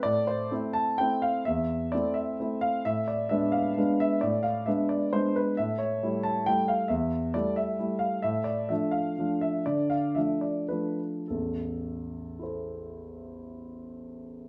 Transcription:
<<
  \new Staff \with { instrumentName = "Grand piano" } { \time 3/4 \key a \minor \tempo 4 = 127 << { d''8 c''4 a''8 g''8 f''8 | e''4 d''8 e''4 f''8 | e''8 d''8 e''8 f''4 e''8 | d''8 f''8 e''8 d''8 c''8 b'8 |
e''8 cis''4 a''8 g''8 f''8 | e''4 d''8 e''4 f''8 | e''8 d''8 e''8 f''4 e''8 | d''8 f''8 e''8 d''8 b'8 r8 |
a'2.~ | a'2. | } \\ { r2. | r2. | r2. | r2. |
r2. | r2. | r2. | r2. |
r2 <e' a' c''>4~ | <e' a' c''>2. | } >> }
  \new Staff \with { instrumentName = "Grand piano" } { \time 3/4 \key a \minor a,4 <a c' e'>4 <a c' e'>4 | e,4 <a c' e'>4 <a c' e'>4 | a,4 <gis b d'>4 <gis b d'>4 | a,4 <gis b d'>4 <gis b d'>4 |
a,4 <g a e'>4 <g a e'>4 | e,4 <g a e'>4 <g a e'>4 | a,4 <f a d'>4 <f a d'>4 | d4 <f a d'>4 <f a d'>4 |
<a,, e,>2.~ | <a,, e,>2. | }
>>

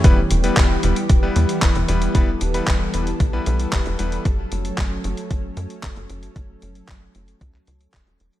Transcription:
<<
  \new Staff \with { instrumentName = "Electric grand piano" } { \time 4/4 \key e \dorian \tempo 4 = 114 <g b e' b'>16 r8 <g b e' b'>8. <g b e' b'>16 r8 <g b e' b'>8. <g b e' b'>8 <g b e' b'>8 | <g b e' b'>16 r8 <g b e' b'>8. <g b e' b'>16 r8 <g b e' b'>8. <g b e' b'>8 <g b e' b'>8 | r1 | r1 | }
  \new Staff \with { instrumentName = "Analog synth pad" } { \time 4/4 \key e \dorian << { g'1 | a'1~ | a'1~ | a'1 | } \\ { <e g b>1~ | <e g b>1 | <fis a cis'>1~ | <fis a cis'>1 | } >> }
  \new Staff \with { instrumentName = "Analog synth bass" } { \clef bass \time 4/4 \key e \dorian e,,8 e,,8 e,,8 e,,16 r16 e,,8 e,16 r16 e,,16 e,,16 e,,8 | e,,8 e,,8 e,,8 e,,8 b,,8 b,,8 e,,16 e,,16 e,,8 | fis,,8 fis,,8 fis,,8 fis,,16 r16 fis,,8 fis,16 r16 fis,,16 fis,,16 fis,,8 | fis,,8 fis,,8 fis,,8 fis,,8 cis,8 cis,8 e,,16 e,,16 e,,16 r16 | }
  \new DrumStaff \with { instrumentName = "Drums" } \drummode { \time 4/4 <hh bd>8 hh16 hh16 <hc hh bd>8 hh16 hh16 <hh bd>8 hh16 hh16 <hc hh bd>16 hh16 hh16 hh16 | <hh bd>8 hh16 hh16 <hc hh bd>8 hh16 hh16 <hh bd>8 hh16 hh16 <hc hh bd>16 hh16 hh16 hh16 | <hh bd>8 hh16 hh16 <hc hh bd>8 hh16 hh16 <hh bd>8 hh16 hh16 <hc hh bd>16 hh16 hh16 hh16 | <hh bd>8 hh16 hh16 <hc hh bd>8 hh16 hh16 <hh bd>16 hc16 hh16 hh16 <hc hh bd>16 hh16 hh16 hh16 | }
>>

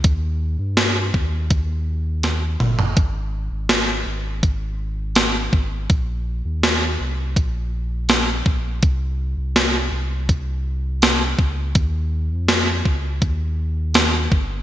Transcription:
<<
  \new Staff \with { instrumentName = "Sub bass" } { \clef bass \time 4/4 \key ees \mixolydian \tempo 4 = 82 ees,8. g,8. ees,8 ees,4. g,,8 | aes,,8. aes,,8. aes,,2 aes,,8 | bes,,8. ees,8. c,8 bes,,4. bes,,8 | c,8. c,8. c,2 des,8 |
ees,8. f,8. des,8 ees,4. g,,8 | }
  \new DrumStaff \with { instrumentName = "Drums" } \drummode { \time 4/4 <hh bd>4 <hh sn>8 bd8 <hh bd>4 <hh sn>8 toml16 tomfh16 | <hh bd>4 <hh sn>4 <hh bd>4 <hh sn>8 bd8 | <hh bd>4 <hh sn>4 <hh bd>4 <hh sn>8 bd8 | <hh bd>4 <hh sn>4 <hh bd>4 <hh sn>8 bd8 |
<hh bd>4 <hh sn>8 bd8 <hh bd>4 <hh sn>8 bd8 | }
>>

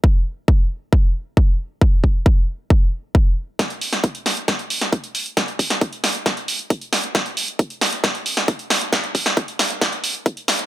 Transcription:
\new DrumStaff \with { instrumentName = "Drums" } \drummode { \time 4/4 \tempo 4 = 135 bd4 bd4 bd4 bd4 | bd8 bd8 bd4 bd4 bd4 | <hh bd sn>16 hh16 hho16 <hh sn>16 <hh bd>16 hh16 <hho sn>16 hh16 <hh bd sn>16 hh16 hho16 <hh sn>16 <hh bd>16 hh16 hho16 hh16 | <hh bd sn>16 hh16 <hho bd>16 <hh sn>16 <hh bd>16 hh16 <hho sn>16 hh16 <hh bd sn>16 hh16 hho16 hh16 <hh bd>16 hh16 <hho sn>16 hh16 |
<hh bd sn>16 hh16 hho16 hh16 <hh bd>16 hh16 <hho sn>16 hh16 <hh bd sn>16 hh16 hho16 <hh sn>16 <hh bd>16 hh16 <hho sn>16 hh16 | <hh bd sn>16 hh16 <hho bd>16 <hh sn>16 <hh bd>16 hh16 <hho sn>16 hh16 <hh bd sn>16 hh16 hho16 hh16 <hh bd>16 hh16 <hho sn>16 hh16 | }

